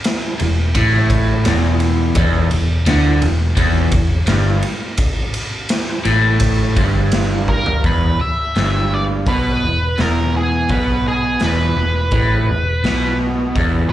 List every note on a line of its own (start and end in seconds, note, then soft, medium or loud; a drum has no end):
0.04 snare loud
0.04 ride loud
0.39 0.73 E1 medium
0.39 0.68 E2 medium
0.39 ride medium
0.74 1.42 A1 medium
0.74 1.45 A2 loud
0.74 kick medium
0.74 ride loud
1.10 kick medium
1.10 ride medium
1.45 2.13 E1 loud
1.45 2.15 E2 medium
1.45 snare loud
1.45 ride medium
1.80 ride medium
2.15 2.49 E1 medium
2.15 2.50 E2 loud
2.15 kick loud
2.15 ride medium
2.51 2.85 E1 medium
2.51 2.80 E2 medium
2.51 ride medium
2.86 3.20 D2 medium
2.86 3.22 D3 loud
2.86 snare loud
2.86 ride medium
3.22 3.55 E1 medium
3.22 3.51 E2 medium
3.22 ride medium
3.57 3.91 E1 medium
3.57 3.92 E2 loud
3.57 kick medium
3.57 ride medium
3.91 4.26 E1 medium
3.91 4.22 E2 medium
3.91 kick medium
3.91 ride medium
4.27 4.61 G1 loud
4.27 4.63 G2 medium
4.27 snare loud
4.27 ride medium
4.63 ride medium
4.97 kick loud
4.97 ride loud
5.34 ride medium
5.69 snare loud
5.69 ride loud
6.05 6.73 A1 medium
6.05 6.76 A2 loud
6.05 ride medium
6.40 kick medium
6.40 ride loud
6.76 7.80 G1 medium
6.76 7.83 G2 medium
6.76 kick medium
6.76 ride medium
7.12 snare loud
7.12 ride medium
7.48 7.82 A#4 medium
7.48 kick medium
7.66 floor tom medium
7.84 8.18 E1 medium
7.84 8.19 E2 medium
7.84 8.19 B4 medium
7.84 kick medium
7.84 open hi-hat soft
8.20 8.94 E5 loud
8.20 muted fingered electric bass stroke soft
8.20 muted overdriven electric guitar stroke soft
8.55 9.23 G1 medium
8.55 9.26 G2 medium
8.55 snare loud
8.55 open hi-hat soft
8.94 9.03 D5 medium
9.26 9.60 B1 medium
9.26 9.62 B2 loud
9.26 10.01 B4 medium
9.26 kick loud
9.26 open hi-hat soft
9.63 9.96 E1 medium
9.63 9.92 E2 medium
9.98 10.66 E1 medium
9.98 10.69 E2 medium
9.98 10.36 A#4 medium
9.98 snare medium
9.98 open hi-hat soft
10.36 10.71 G#4 medium
10.69 11.37 B1 medium
10.69 11.41 B2 medium
10.69 11.07 B4 medium
10.69 kick medium
10.69 open hi-hat soft
11.08 11.40 G#4 medium
11.40 11.75 E1 medium
11.40 11.76 E2 medium
11.40 snare loud
11.40 open hi-hat medium
11.44 13.18 B4 medium
11.76 12.10 E1 medium
11.76 12.06 E2 medium
12.11 12.46 A1 medium
12.11 12.47 A2 loud
12.11 kick loud
12.11 open hi-hat medium
12.48 12.82 E1 medium
12.48 12.78 E2 medium
12.84 13.52 B1 medium
12.84 13.55 B2 medium
12.84 snare loud
12.84 open hi-hat soft
13.55 13.89 E1 medium
13.55 13.91 E2 loud
13.55 kick loud
13.55 open hi-hat soft